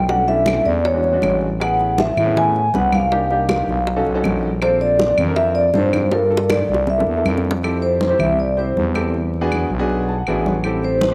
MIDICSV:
0, 0, Header, 1, 5, 480
1, 0, Start_track
1, 0, Tempo, 376884
1, 117, Time_signature, 4, 2, 24, 8
1, 14190, End_track
2, 0, Start_track
2, 0, Title_t, "Vibraphone"
2, 0, Program_c, 0, 11
2, 0, Note_on_c, 0, 79, 95
2, 115, Note_on_c, 0, 78, 101
2, 132, Note_off_c, 0, 79, 0
2, 358, Note_on_c, 0, 76, 107
2, 364, Note_off_c, 0, 78, 0
2, 834, Note_on_c, 0, 74, 92
2, 854, Note_off_c, 0, 76, 0
2, 1083, Note_on_c, 0, 73, 91
2, 1085, Note_off_c, 0, 74, 0
2, 1753, Note_off_c, 0, 73, 0
2, 2066, Note_on_c, 0, 78, 99
2, 2544, Note_on_c, 0, 76, 94
2, 2550, Note_off_c, 0, 78, 0
2, 3025, Note_on_c, 0, 80, 105
2, 3029, Note_off_c, 0, 76, 0
2, 3509, Note_off_c, 0, 80, 0
2, 3509, Note_on_c, 0, 78, 89
2, 3744, Note_off_c, 0, 78, 0
2, 3749, Note_on_c, 0, 77, 90
2, 5127, Note_off_c, 0, 77, 0
2, 5883, Note_on_c, 0, 72, 100
2, 6127, Note_on_c, 0, 74, 102
2, 6132, Note_off_c, 0, 72, 0
2, 6573, Note_off_c, 0, 74, 0
2, 6826, Note_on_c, 0, 76, 107
2, 6938, Note_off_c, 0, 76, 0
2, 7066, Note_on_c, 0, 74, 98
2, 7323, Note_off_c, 0, 74, 0
2, 7337, Note_on_c, 0, 72, 86
2, 7805, Note_on_c, 0, 70, 87
2, 7825, Note_off_c, 0, 72, 0
2, 8288, Note_on_c, 0, 74, 87
2, 8298, Note_off_c, 0, 70, 0
2, 8780, Note_off_c, 0, 74, 0
2, 8786, Note_on_c, 0, 76, 83
2, 9221, Note_off_c, 0, 76, 0
2, 9963, Note_on_c, 0, 72, 86
2, 10408, Note_off_c, 0, 72, 0
2, 10442, Note_on_c, 0, 76, 98
2, 10674, Note_off_c, 0, 76, 0
2, 10695, Note_on_c, 0, 74, 75
2, 10921, Note_off_c, 0, 74, 0
2, 10941, Note_on_c, 0, 72, 81
2, 11164, Note_off_c, 0, 72, 0
2, 13812, Note_on_c, 0, 72, 88
2, 14190, Note_off_c, 0, 72, 0
2, 14190, End_track
3, 0, Start_track
3, 0, Title_t, "Upright piano"
3, 0, Program_c, 1, 0
3, 116, Note_on_c, 1, 57, 67
3, 120, Note_on_c, 1, 61, 65
3, 121, Note_on_c, 1, 62, 70
3, 122, Note_on_c, 1, 66, 75
3, 286, Note_off_c, 1, 57, 0
3, 287, Note_off_c, 1, 61, 0
3, 288, Note_off_c, 1, 62, 0
3, 288, Note_off_c, 1, 66, 0
3, 348, Note_on_c, 1, 57, 76
3, 351, Note_on_c, 1, 62, 72
3, 353, Note_on_c, 1, 64, 78
3, 354, Note_on_c, 1, 61, 71
3, 943, Note_off_c, 1, 57, 0
3, 945, Note_off_c, 1, 62, 0
3, 945, Note_off_c, 1, 64, 0
3, 946, Note_off_c, 1, 61, 0
3, 1190, Note_on_c, 1, 56, 70
3, 1195, Note_on_c, 1, 61, 62
3, 1196, Note_on_c, 1, 62, 65
3, 1199, Note_on_c, 1, 66, 76
3, 1364, Note_off_c, 1, 56, 0
3, 1367, Note_off_c, 1, 61, 0
3, 1367, Note_off_c, 1, 62, 0
3, 1369, Note_off_c, 1, 66, 0
3, 1431, Note_on_c, 1, 61, 68
3, 1433, Note_on_c, 1, 56, 78
3, 1441, Note_on_c, 1, 66, 83
3, 1443, Note_on_c, 1, 62, 75
3, 1857, Note_off_c, 1, 61, 0
3, 1858, Note_off_c, 1, 56, 0
3, 1862, Note_off_c, 1, 66, 0
3, 1863, Note_off_c, 1, 62, 0
3, 2037, Note_on_c, 1, 68, 84
3, 2040, Note_on_c, 1, 59, 74
3, 2041, Note_on_c, 1, 61, 67
3, 2042, Note_on_c, 1, 64, 74
3, 2629, Note_off_c, 1, 68, 0
3, 2630, Note_off_c, 1, 59, 0
3, 2631, Note_off_c, 1, 61, 0
3, 2632, Note_off_c, 1, 64, 0
3, 2871, Note_on_c, 1, 59, 76
3, 2871, Note_on_c, 1, 61, 70
3, 2876, Note_on_c, 1, 64, 69
3, 2878, Note_on_c, 1, 68, 81
3, 3298, Note_off_c, 1, 59, 0
3, 3298, Note_off_c, 1, 61, 0
3, 3301, Note_off_c, 1, 64, 0
3, 3302, Note_off_c, 1, 68, 0
3, 3485, Note_on_c, 1, 61, 63
3, 3487, Note_on_c, 1, 59, 66
3, 3488, Note_on_c, 1, 64, 63
3, 3489, Note_on_c, 1, 71, 82
3, 3822, Note_off_c, 1, 59, 0
3, 3822, Note_off_c, 1, 61, 0
3, 3823, Note_off_c, 1, 64, 0
3, 3824, Note_off_c, 1, 71, 0
3, 3972, Note_on_c, 1, 58, 68
3, 3973, Note_on_c, 1, 63, 65
3, 3976, Note_on_c, 1, 67, 76
3, 3978, Note_on_c, 1, 62, 72
3, 4137, Note_off_c, 1, 58, 0
3, 4138, Note_off_c, 1, 63, 0
3, 4139, Note_off_c, 1, 67, 0
3, 4140, Note_off_c, 1, 62, 0
3, 4206, Note_on_c, 1, 58, 69
3, 4206, Note_on_c, 1, 63, 66
3, 4212, Note_on_c, 1, 62, 68
3, 4212, Note_on_c, 1, 67, 86
3, 4794, Note_off_c, 1, 58, 0
3, 4794, Note_off_c, 1, 63, 0
3, 4797, Note_off_c, 1, 62, 0
3, 4797, Note_off_c, 1, 67, 0
3, 5044, Note_on_c, 1, 63, 83
3, 5048, Note_on_c, 1, 66, 83
3, 5049, Note_on_c, 1, 69, 100
3, 5051, Note_on_c, 1, 61, 86
3, 5213, Note_off_c, 1, 63, 0
3, 5215, Note_off_c, 1, 66, 0
3, 5216, Note_off_c, 1, 61, 0
3, 5216, Note_off_c, 1, 69, 0
3, 5278, Note_on_c, 1, 61, 94
3, 5281, Note_on_c, 1, 63, 90
3, 5282, Note_on_c, 1, 66, 86
3, 5287, Note_on_c, 1, 69, 99
3, 5702, Note_off_c, 1, 61, 0
3, 5704, Note_off_c, 1, 63, 0
3, 5704, Note_off_c, 1, 66, 0
3, 5707, Note_off_c, 1, 69, 0
3, 5889, Note_on_c, 1, 62, 69
3, 5891, Note_on_c, 1, 65, 75
3, 5895, Note_on_c, 1, 60, 83
3, 5895, Note_on_c, 1, 69, 82
3, 6475, Note_off_c, 1, 62, 0
3, 6476, Note_off_c, 1, 65, 0
3, 6478, Note_off_c, 1, 60, 0
3, 6478, Note_off_c, 1, 69, 0
3, 6715, Note_on_c, 1, 62, 66
3, 6716, Note_on_c, 1, 60, 77
3, 6721, Note_on_c, 1, 65, 68
3, 6727, Note_on_c, 1, 70, 86
3, 7140, Note_off_c, 1, 62, 0
3, 7141, Note_off_c, 1, 60, 0
3, 7143, Note_off_c, 1, 65, 0
3, 7146, Note_off_c, 1, 70, 0
3, 7311, Note_on_c, 1, 60, 76
3, 7312, Note_on_c, 1, 65, 68
3, 7314, Note_on_c, 1, 62, 70
3, 7315, Note_on_c, 1, 69, 76
3, 7654, Note_off_c, 1, 60, 0
3, 7654, Note_off_c, 1, 65, 0
3, 7655, Note_off_c, 1, 62, 0
3, 7656, Note_off_c, 1, 69, 0
3, 7793, Note_on_c, 1, 58, 71
3, 7795, Note_on_c, 1, 62, 64
3, 7800, Note_on_c, 1, 65, 71
3, 7800, Note_on_c, 1, 69, 80
3, 7967, Note_off_c, 1, 58, 0
3, 7968, Note_off_c, 1, 62, 0
3, 7970, Note_off_c, 1, 65, 0
3, 7970, Note_off_c, 1, 69, 0
3, 8022, Note_on_c, 1, 62, 68
3, 8026, Note_on_c, 1, 58, 75
3, 8027, Note_on_c, 1, 65, 65
3, 8030, Note_on_c, 1, 69, 87
3, 8621, Note_off_c, 1, 62, 0
3, 8622, Note_off_c, 1, 58, 0
3, 8623, Note_off_c, 1, 65, 0
3, 8625, Note_off_c, 1, 69, 0
3, 8886, Note_on_c, 1, 58, 75
3, 8888, Note_on_c, 1, 62, 66
3, 8888, Note_on_c, 1, 64, 69
3, 8889, Note_on_c, 1, 69, 77
3, 9052, Note_off_c, 1, 58, 0
3, 9054, Note_off_c, 1, 62, 0
3, 9054, Note_off_c, 1, 64, 0
3, 9054, Note_off_c, 1, 69, 0
3, 9121, Note_on_c, 1, 58, 74
3, 9121, Note_on_c, 1, 62, 69
3, 9128, Note_on_c, 1, 64, 73
3, 9130, Note_on_c, 1, 69, 85
3, 9542, Note_off_c, 1, 58, 0
3, 9542, Note_off_c, 1, 62, 0
3, 9545, Note_off_c, 1, 64, 0
3, 9546, Note_off_c, 1, 69, 0
3, 9721, Note_on_c, 1, 64, 78
3, 9722, Note_on_c, 1, 60, 83
3, 9725, Note_on_c, 1, 67, 69
3, 9727, Note_on_c, 1, 69, 89
3, 10141, Note_off_c, 1, 64, 0
3, 10142, Note_off_c, 1, 60, 0
3, 10143, Note_off_c, 1, 67, 0
3, 10144, Note_off_c, 1, 69, 0
3, 10310, Note_on_c, 1, 64, 75
3, 10310, Note_on_c, 1, 72, 81
3, 10311, Note_on_c, 1, 60, 79
3, 10314, Note_on_c, 1, 67, 68
3, 10735, Note_off_c, 1, 64, 0
3, 10735, Note_off_c, 1, 72, 0
3, 10736, Note_off_c, 1, 60, 0
3, 10737, Note_off_c, 1, 67, 0
3, 10916, Note_on_c, 1, 60, 67
3, 10916, Note_on_c, 1, 72, 81
3, 10917, Note_on_c, 1, 64, 65
3, 10919, Note_on_c, 1, 67, 63
3, 11254, Note_off_c, 1, 60, 0
3, 11254, Note_off_c, 1, 64, 0
3, 11254, Note_off_c, 1, 72, 0
3, 11256, Note_off_c, 1, 67, 0
3, 11392, Note_on_c, 1, 60, 88
3, 11392, Note_on_c, 1, 67, 70
3, 11395, Note_on_c, 1, 64, 70
3, 11400, Note_on_c, 1, 69, 88
3, 11636, Note_off_c, 1, 60, 0
3, 11636, Note_off_c, 1, 67, 0
3, 11637, Note_off_c, 1, 64, 0
3, 11640, Note_off_c, 1, 69, 0
3, 11988, Note_on_c, 1, 59, 102
3, 11988, Note_on_c, 1, 62, 93
3, 11992, Note_on_c, 1, 66, 95
3, 11993, Note_on_c, 1, 68, 107
3, 12329, Note_off_c, 1, 59, 0
3, 12329, Note_off_c, 1, 62, 0
3, 12331, Note_off_c, 1, 66, 0
3, 12332, Note_off_c, 1, 68, 0
3, 12466, Note_on_c, 1, 59, 94
3, 12467, Note_on_c, 1, 62, 93
3, 12474, Note_on_c, 1, 68, 110
3, 12475, Note_on_c, 1, 66, 90
3, 12841, Note_on_c, 1, 81, 67
3, 12892, Note_off_c, 1, 59, 0
3, 12892, Note_off_c, 1, 62, 0
3, 12896, Note_off_c, 1, 66, 0
3, 12896, Note_off_c, 1, 68, 0
3, 12951, Note_off_c, 1, 81, 0
3, 12966, Note_on_c, 1, 78, 64
3, 13074, Note_off_c, 1, 78, 0
3, 13087, Note_on_c, 1, 59, 92
3, 13088, Note_on_c, 1, 76, 73
3, 13091, Note_on_c, 1, 66, 83
3, 13091, Note_on_c, 1, 68, 101
3, 13093, Note_on_c, 1, 62, 83
3, 13306, Note_off_c, 1, 76, 0
3, 13331, Note_on_c, 1, 73, 62
3, 13418, Note_off_c, 1, 59, 0
3, 13420, Note_off_c, 1, 66, 0
3, 13420, Note_off_c, 1, 68, 0
3, 13421, Note_off_c, 1, 62, 0
3, 13547, Note_off_c, 1, 73, 0
3, 13557, Note_on_c, 1, 64, 78
3, 13559, Note_on_c, 1, 60, 85
3, 13560, Note_on_c, 1, 67, 72
3, 13565, Note_on_c, 1, 69, 93
3, 13976, Note_off_c, 1, 64, 0
3, 13977, Note_off_c, 1, 60, 0
3, 13978, Note_off_c, 1, 67, 0
3, 13980, Note_off_c, 1, 69, 0
3, 14190, End_track
4, 0, Start_track
4, 0, Title_t, "FM bass"
4, 0, Program_c, 2, 39
4, 0, Note_on_c, 2, 35, 98
4, 764, Note_off_c, 2, 35, 0
4, 839, Note_on_c, 2, 40, 99
4, 1511, Note_off_c, 2, 40, 0
4, 1563, Note_on_c, 2, 33, 93
4, 2690, Note_off_c, 2, 33, 0
4, 2765, Note_on_c, 2, 45, 94
4, 3435, Note_off_c, 2, 45, 0
4, 3490, Note_on_c, 2, 36, 94
4, 4613, Note_off_c, 2, 36, 0
4, 4683, Note_on_c, 2, 35, 101
4, 5131, Note_off_c, 2, 35, 0
4, 5174, Note_on_c, 2, 35, 78
4, 5391, Note_off_c, 2, 35, 0
4, 5398, Note_on_c, 2, 34, 96
4, 6527, Note_off_c, 2, 34, 0
4, 6595, Note_on_c, 2, 41, 97
4, 7269, Note_off_c, 2, 41, 0
4, 7318, Note_on_c, 2, 43, 90
4, 8446, Note_off_c, 2, 43, 0
4, 8520, Note_on_c, 2, 36, 104
4, 8968, Note_off_c, 2, 36, 0
4, 8999, Note_on_c, 2, 40, 74
4, 9224, Note_off_c, 2, 40, 0
4, 9243, Note_on_c, 2, 41, 92
4, 10366, Note_off_c, 2, 41, 0
4, 10449, Note_on_c, 2, 36, 90
4, 11114, Note_off_c, 2, 36, 0
4, 11160, Note_on_c, 2, 40, 93
4, 12284, Note_off_c, 2, 40, 0
4, 12356, Note_on_c, 2, 35, 103
4, 13026, Note_off_c, 2, 35, 0
4, 13079, Note_on_c, 2, 33, 96
4, 14190, Note_off_c, 2, 33, 0
4, 14190, End_track
5, 0, Start_track
5, 0, Title_t, "Drums"
5, 110, Note_on_c, 9, 63, 35
5, 117, Note_on_c, 9, 60, 73
5, 237, Note_off_c, 9, 63, 0
5, 244, Note_off_c, 9, 60, 0
5, 349, Note_on_c, 9, 63, 33
5, 362, Note_on_c, 9, 60, 34
5, 476, Note_off_c, 9, 63, 0
5, 490, Note_off_c, 9, 60, 0
5, 585, Note_on_c, 9, 63, 91
5, 603, Note_on_c, 9, 60, 58
5, 608, Note_on_c, 9, 75, 68
5, 712, Note_off_c, 9, 63, 0
5, 731, Note_off_c, 9, 60, 0
5, 736, Note_off_c, 9, 75, 0
5, 830, Note_on_c, 9, 63, 33
5, 838, Note_on_c, 9, 60, 32
5, 957, Note_off_c, 9, 63, 0
5, 965, Note_off_c, 9, 60, 0
5, 1075, Note_on_c, 9, 63, 33
5, 1083, Note_on_c, 9, 60, 65
5, 1203, Note_off_c, 9, 63, 0
5, 1211, Note_off_c, 9, 60, 0
5, 1311, Note_on_c, 9, 63, 33
5, 1324, Note_on_c, 9, 60, 33
5, 1439, Note_off_c, 9, 63, 0
5, 1451, Note_off_c, 9, 60, 0
5, 1554, Note_on_c, 9, 63, 79
5, 1566, Note_on_c, 9, 75, 64
5, 1571, Note_on_c, 9, 60, 34
5, 1571, Note_on_c, 9, 61, 75
5, 1682, Note_off_c, 9, 63, 0
5, 1694, Note_off_c, 9, 75, 0
5, 1699, Note_off_c, 9, 60, 0
5, 1699, Note_off_c, 9, 61, 0
5, 1799, Note_on_c, 9, 63, 35
5, 1927, Note_off_c, 9, 63, 0
5, 2043, Note_on_c, 9, 63, 34
5, 2056, Note_on_c, 9, 60, 70
5, 2059, Note_on_c, 9, 75, 73
5, 2170, Note_off_c, 9, 63, 0
5, 2183, Note_off_c, 9, 60, 0
5, 2186, Note_off_c, 9, 75, 0
5, 2283, Note_on_c, 9, 63, 35
5, 2300, Note_on_c, 9, 60, 36
5, 2410, Note_off_c, 9, 63, 0
5, 2428, Note_off_c, 9, 60, 0
5, 2524, Note_on_c, 9, 63, 95
5, 2543, Note_on_c, 9, 60, 59
5, 2652, Note_off_c, 9, 63, 0
5, 2670, Note_off_c, 9, 60, 0
5, 2765, Note_on_c, 9, 63, 32
5, 2765, Note_on_c, 9, 64, 77
5, 2770, Note_on_c, 9, 75, 68
5, 2778, Note_on_c, 9, 60, 34
5, 2892, Note_off_c, 9, 63, 0
5, 2892, Note_off_c, 9, 64, 0
5, 2898, Note_off_c, 9, 75, 0
5, 2906, Note_off_c, 9, 60, 0
5, 3011, Note_on_c, 9, 63, 34
5, 3011, Note_on_c, 9, 64, 71
5, 3021, Note_on_c, 9, 60, 73
5, 3138, Note_off_c, 9, 63, 0
5, 3138, Note_off_c, 9, 64, 0
5, 3148, Note_off_c, 9, 60, 0
5, 3243, Note_on_c, 9, 63, 32
5, 3259, Note_on_c, 9, 60, 34
5, 3370, Note_off_c, 9, 63, 0
5, 3387, Note_off_c, 9, 60, 0
5, 3488, Note_on_c, 9, 63, 75
5, 3499, Note_on_c, 9, 60, 32
5, 3499, Note_on_c, 9, 61, 77
5, 3615, Note_off_c, 9, 63, 0
5, 3626, Note_off_c, 9, 60, 0
5, 3626, Note_off_c, 9, 61, 0
5, 3725, Note_on_c, 9, 75, 67
5, 3728, Note_on_c, 9, 63, 83
5, 3852, Note_off_c, 9, 75, 0
5, 3855, Note_off_c, 9, 63, 0
5, 3969, Note_on_c, 9, 63, 36
5, 3972, Note_on_c, 9, 60, 71
5, 4097, Note_off_c, 9, 63, 0
5, 4100, Note_off_c, 9, 60, 0
5, 4209, Note_on_c, 9, 63, 35
5, 4210, Note_on_c, 9, 60, 36
5, 4336, Note_off_c, 9, 63, 0
5, 4338, Note_off_c, 9, 60, 0
5, 4442, Note_on_c, 9, 63, 97
5, 4446, Note_on_c, 9, 75, 73
5, 4449, Note_on_c, 9, 60, 58
5, 4570, Note_off_c, 9, 63, 0
5, 4574, Note_off_c, 9, 75, 0
5, 4577, Note_off_c, 9, 60, 0
5, 4686, Note_on_c, 9, 63, 33
5, 4703, Note_on_c, 9, 60, 33
5, 4813, Note_off_c, 9, 63, 0
5, 4831, Note_off_c, 9, 60, 0
5, 4926, Note_on_c, 9, 63, 36
5, 4930, Note_on_c, 9, 60, 71
5, 5054, Note_off_c, 9, 63, 0
5, 5058, Note_off_c, 9, 60, 0
5, 5159, Note_on_c, 9, 63, 35
5, 5176, Note_on_c, 9, 60, 36
5, 5286, Note_off_c, 9, 63, 0
5, 5304, Note_off_c, 9, 60, 0
5, 5397, Note_on_c, 9, 63, 82
5, 5402, Note_on_c, 9, 75, 64
5, 5416, Note_on_c, 9, 60, 31
5, 5416, Note_on_c, 9, 61, 82
5, 5525, Note_off_c, 9, 63, 0
5, 5529, Note_off_c, 9, 75, 0
5, 5543, Note_off_c, 9, 60, 0
5, 5543, Note_off_c, 9, 61, 0
5, 5641, Note_on_c, 9, 63, 36
5, 5768, Note_off_c, 9, 63, 0
5, 5879, Note_on_c, 9, 75, 74
5, 5885, Note_on_c, 9, 63, 35
5, 5888, Note_on_c, 9, 60, 66
5, 6006, Note_off_c, 9, 75, 0
5, 6013, Note_off_c, 9, 63, 0
5, 6016, Note_off_c, 9, 60, 0
5, 6124, Note_on_c, 9, 60, 34
5, 6129, Note_on_c, 9, 63, 32
5, 6251, Note_off_c, 9, 60, 0
5, 6256, Note_off_c, 9, 63, 0
5, 6358, Note_on_c, 9, 60, 62
5, 6362, Note_on_c, 9, 63, 95
5, 6485, Note_off_c, 9, 60, 0
5, 6489, Note_off_c, 9, 63, 0
5, 6593, Note_on_c, 9, 75, 68
5, 6601, Note_on_c, 9, 60, 32
5, 6602, Note_on_c, 9, 63, 32
5, 6602, Note_on_c, 9, 64, 78
5, 6720, Note_off_c, 9, 75, 0
5, 6728, Note_off_c, 9, 60, 0
5, 6729, Note_off_c, 9, 63, 0
5, 6729, Note_off_c, 9, 64, 0
5, 6831, Note_on_c, 9, 60, 74
5, 6842, Note_on_c, 9, 63, 35
5, 6958, Note_off_c, 9, 60, 0
5, 6969, Note_off_c, 9, 63, 0
5, 7075, Note_on_c, 9, 60, 31
5, 7082, Note_on_c, 9, 63, 32
5, 7202, Note_off_c, 9, 60, 0
5, 7209, Note_off_c, 9, 63, 0
5, 7305, Note_on_c, 9, 60, 33
5, 7305, Note_on_c, 9, 61, 72
5, 7324, Note_on_c, 9, 63, 88
5, 7433, Note_off_c, 9, 60, 0
5, 7433, Note_off_c, 9, 61, 0
5, 7451, Note_off_c, 9, 63, 0
5, 7554, Note_on_c, 9, 75, 71
5, 7561, Note_on_c, 9, 63, 85
5, 7681, Note_off_c, 9, 75, 0
5, 7688, Note_off_c, 9, 63, 0
5, 7787, Note_on_c, 9, 60, 99
5, 7803, Note_on_c, 9, 63, 34
5, 7915, Note_off_c, 9, 60, 0
5, 7930, Note_off_c, 9, 63, 0
5, 8048, Note_on_c, 9, 63, 38
5, 8116, Note_on_c, 9, 60, 92
5, 8175, Note_off_c, 9, 63, 0
5, 8243, Note_off_c, 9, 60, 0
5, 8273, Note_on_c, 9, 60, 101
5, 8280, Note_on_c, 9, 63, 88
5, 8282, Note_on_c, 9, 75, 68
5, 8401, Note_off_c, 9, 60, 0
5, 8408, Note_off_c, 9, 63, 0
5, 8409, Note_off_c, 9, 75, 0
5, 8522, Note_on_c, 9, 63, 37
5, 8588, Note_on_c, 9, 60, 79
5, 8649, Note_off_c, 9, 63, 0
5, 8715, Note_off_c, 9, 60, 0
5, 8750, Note_on_c, 9, 61, 88
5, 8769, Note_on_c, 9, 63, 34
5, 8877, Note_off_c, 9, 61, 0
5, 8896, Note_off_c, 9, 63, 0
5, 8919, Note_on_c, 9, 61, 87
5, 9001, Note_on_c, 9, 63, 33
5, 9047, Note_off_c, 9, 61, 0
5, 9129, Note_off_c, 9, 63, 0
5, 9239, Note_on_c, 9, 61, 70
5, 9242, Note_on_c, 9, 63, 85
5, 9244, Note_on_c, 9, 75, 69
5, 9366, Note_off_c, 9, 61, 0
5, 9369, Note_off_c, 9, 63, 0
5, 9371, Note_off_c, 9, 75, 0
5, 9393, Note_on_c, 9, 61, 67
5, 9481, Note_on_c, 9, 63, 34
5, 9520, Note_off_c, 9, 61, 0
5, 9562, Note_on_c, 9, 61, 107
5, 9608, Note_off_c, 9, 63, 0
5, 9690, Note_off_c, 9, 61, 0
5, 9719, Note_on_c, 9, 63, 35
5, 9733, Note_on_c, 9, 75, 68
5, 9847, Note_off_c, 9, 63, 0
5, 9860, Note_off_c, 9, 75, 0
5, 9966, Note_on_c, 9, 63, 34
5, 10093, Note_off_c, 9, 63, 0
5, 10199, Note_on_c, 9, 63, 92
5, 10327, Note_off_c, 9, 63, 0
5, 10433, Note_on_c, 9, 63, 34
5, 10433, Note_on_c, 9, 64, 82
5, 10441, Note_on_c, 9, 75, 66
5, 10561, Note_off_c, 9, 63, 0
5, 10561, Note_off_c, 9, 64, 0
5, 10568, Note_off_c, 9, 75, 0
5, 10681, Note_on_c, 9, 63, 33
5, 10809, Note_off_c, 9, 63, 0
5, 10923, Note_on_c, 9, 63, 34
5, 11050, Note_off_c, 9, 63, 0
5, 11168, Note_on_c, 9, 63, 78
5, 11295, Note_off_c, 9, 63, 0
5, 11400, Note_on_c, 9, 63, 73
5, 11406, Note_on_c, 9, 75, 68
5, 11527, Note_off_c, 9, 63, 0
5, 11533, Note_off_c, 9, 75, 0
5, 11643, Note_on_c, 9, 63, 34
5, 11771, Note_off_c, 9, 63, 0
5, 11891, Note_on_c, 9, 63, 34
5, 12018, Note_off_c, 9, 63, 0
5, 12123, Note_on_c, 9, 75, 68
5, 12129, Note_on_c, 9, 63, 54
5, 12250, Note_off_c, 9, 75, 0
5, 12257, Note_off_c, 9, 63, 0
5, 12602, Note_on_c, 9, 63, 34
5, 12730, Note_off_c, 9, 63, 0
5, 12850, Note_on_c, 9, 63, 34
5, 12977, Note_off_c, 9, 63, 0
5, 13076, Note_on_c, 9, 75, 64
5, 13083, Note_on_c, 9, 63, 34
5, 13203, Note_off_c, 9, 75, 0
5, 13210, Note_off_c, 9, 63, 0
5, 13323, Note_on_c, 9, 63, 79
5, 13450, Note_off_c, 9, 63, 0
5, 13549, Note_on_c, 9, 75, 68
5, 13558, Note_on_c, 9, 63, 36
5, 13676, Note_off_c, 9, 75, 0
5, 13685, Note_off_c, 9, 63, 0
5, 13799, Note_on_c, 9, 63, 33
5, 13926, Note_off_c, 9, 63, 0
5, 14026, Note_on_c, 9, 63, 95
5, 14154, Note_off_c, 9, 63, 0
5, 14190, End_track
0, 0, End_of_file